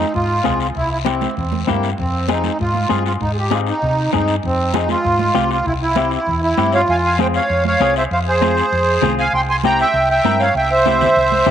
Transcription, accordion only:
Already playing: D#4
0.15 F4
0.61 F4
0.76 E4
0.91 E4
1.07 C4
1.36 C4
1.62 C4
1.67 A#3
1.99 C4
2.29 D#4
2.61 F4
3.06 F4
3.21 D#4
3.33 G#4
3.38 G4
3.53 F4
3.69 D#4
4.15 D#4
4.45 C4
4.75 D#4
4.90 F4
5.51 F4
5.66 E4
5.82 E4
6.13 E4
6.42 E4
6.74 F4 C#5 F5
6.90 F5 G#5
7.05 F5 G#5
7.21 C5 G5
7.35 C#5 F5
7.67 C#5 F5
7.97 C5 E5
8.13 C5 F5
8.28 G#4 C5
9.19 F5 G#5
9.34 G5 C6
9.50 G#5 C6
9.65 G5 A#5
9.81 E5 G5
10.10 E5 G5
10.40 C#5 F5
10.56 E5 G5
10.71 C5 E5

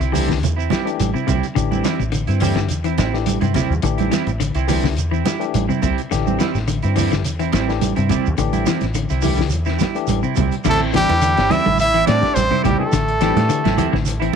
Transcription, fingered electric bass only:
0.00 C2
0.42 E2
1.00 A1
1.28 C2
1.57 A1
2.00 A1
2.28 G2
2.70 E2
2.99 A1
3.42 G2
3.55 muted fingered electric bass stroke
3.70 E2
3.84 A1
4.27 A1
4.55 C2
4.97 E2
5.54 A1
5.84 C2
6.12 A1
6.55 A1
6.84 G2
7.25 E2
7.54 A1
7.98 G2
8.10 muted fingered electric bass stroke
8.27 E2
8.39 A1
8.82 A1
9.11 C2
9.53 E2
10.09 A1
10.38 C2
10.66 A1
11.10 E2
11.39 G1
11.52 muted fingered electric bass stroke
11.66 A1
12.09 A2
12.36 A1
12.65 A1
12.80 muted fingered electric bass stroke
12.93 A1
13.36 A2
13.66 A1
13.94 A1

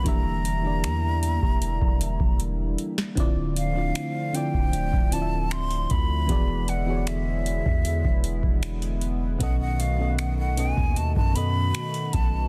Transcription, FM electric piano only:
0.04 E3 A#3 D4 G4
0.08 E5
0.62 E3 A#3 D4 G4
0.67 D5
3.15 D3 C4 E4 F4
3.20 D5
3.74 D3 C4 D4 F4
3.78 D5
4.32 D3 C4 E4 F4
4.37 D5
5.10 D3 C4 E4 F4
5.15 D5
5.22 E5
6.27 E3 B3 F#4 G#4
6.32 D5
6.86 E3 B3 F#4 G#4
6.90 C#5
6.97 D5
9.39 B2 B3 C#4 A4
9.43 D#5
9.97 B2 B3 C#4 A4
10.02 D#5
10.55 B2 B3 C#4 A4
10.60 D#5
11.33 B2 B3 C#4 A4
11.38 D#5

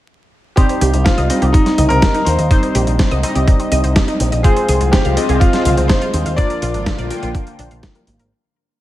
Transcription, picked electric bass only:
0.81 C2
0.93 C2
1.18 C2
1.42 C2
1.78 C2
1.90 C2
2.27 D#2
2.39 D#2
2.75 A#1
2.87 A#1
3.11 C2
3.35 C2
3.72 C2
3.84 C2
4.20 A#1
4.32 A#1
4.69 C2
4.81 C2
5.05 C2
5.29 C2
5.65 C2
5.77 C2
6.14 D#2
6.26 D#2
6.62 A#1
6.74 G#1
6.98 A#1
7.23 A#1
7.59 A#1
7.71 A#1
8.07 G#1

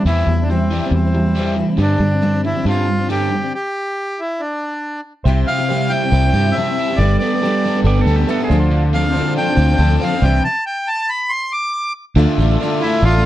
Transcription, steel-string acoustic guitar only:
0.07 E3 G3 C4 E4
0.28 E3 G3 C4 E4
0.40 G3 C4 E4
0.51 E3 G3 C4 E4
0.61 G3 C4 E4
0.73 E3 G3 C4 E4
0.83 G3 C4 E4
1.05 G3 C4 E4
1.26 G3 C4 E4
1.36 E3 G3 C4 E4
1.58 E3 G3 C4 E4
1.69 G3 C4 E4
1.79 G2 D3 G3 C4 D4 G4
2.01 G3 C4 D4 G4
2.12 G3 C4 D4 G4
2.22 G2 D3 G3 C4 D4 G4
2.34 G3 C4 D4 G4
2.45 G3 C4 D4 G4
2.55 G3 C4 D4 G4
2.77 G3 C4 D4 G4
2.98 G3 C4 D4 G4
3.09 G2 D3 G3 C4 D4 G4
3.31 G3 C4 D4 G4
3.42 G3 C4 D4 G4
5.26 C3 G3 C4 E4 G4
5.47 G3 C4 E4 G4
5.58 C4 E4 G4
5.70 C3 G3 C4 E4 G4
5.91 G3 C4 E4 G4
6.02 C4 E4 G4
6.24 C4 E4 G4
6.35 G3 C4 E4 G4
6.47 C4 E4 G4
6.57 C3 G3 C4 E4 G4
6.67 C4 E4 G4
6.90 C4 E4 G4
6.99 G3 B3 D4 A4
7.21 G3 B3 D4 A4
7.32 B3 D4 A4
7.44 G3 B3 D4 A4
7.65 G3 B3 D4 A4
7.75 B3 D4 A4
7.97 B3 D4 A4
8.06 G3 B3 D4 A4
8.18 B3 D4 A4
8.28 G3 B3 D4 A4
8.40 B3 D4 A4
8.50 D3 F3 C4 D4 A4
8.94 F3 C4 D4 A4
9.05 C4 D4 A4
9.15 D3 F3 C4 D4 A4
9.37 F3 C4 D4 A4
9.49 C4 D4 A4
9.70 C4 D4 A4
9.79 F3 C4 D4 A4
9.90 C4 D4 A4
10.01 D3 F3 C4 D4 A4
10.11 C4 D4 A4
10.23 C3 E3 G3 D4 G4
12.17 D3 A3 D4 F4
12.38 D3 A3 D4 F4
12.50 A3 D4 F4
12.62 D3 A3 D4 F4
12.83 D3 A3 D4 F4
13.15 A3 D4 F4

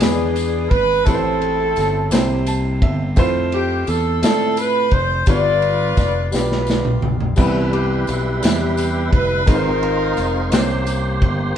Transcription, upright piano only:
0.00 E3 G#3 B3 D4 E4 B4
1.05 A2 A3 C4 E4 G4 B4
1.15 C5
2.11 C3 A#3 C4 E4 G4 C5
2.47 A5
2.82 E5
3.16 A3 C4 E4 F4 C5
4.22 A3 C4 E4 F4 D5
5.27 G2 G3 B3 D4 F4 B4
6.32 G3 B3 D4 F4 G4
7.36 E3 G3 B3 C4 E4 B4
8.41 C3 G3 E4 B4 E5
9.46 G#2 G#3 C4 D#4 F4 B4
9.55 C5
10.51 C3 A#3 C4 C#4 G4 C5

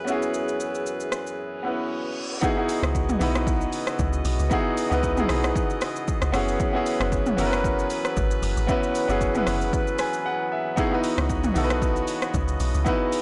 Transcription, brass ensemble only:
Already playing: F#2 E3 G#4 B4
2.43 C#3 E3 B3 F#4 D#5
6.34 E3 F#3 G#4 B4
10.77 C#3 B3 F#4 D#5
12.86 G#4

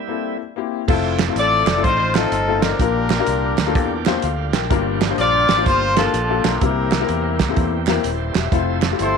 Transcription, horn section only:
1.38 A4 D5
1.84 D#4 F4 C5
2.14 C4 D#4 A4
2.61 D4 G4 A#4
5.19 F4 A#4 D5
5.66 F4 C5
5.97 D4 F4 A4
6.43 E4 G4 A#4
9.01 E4 A4 C5

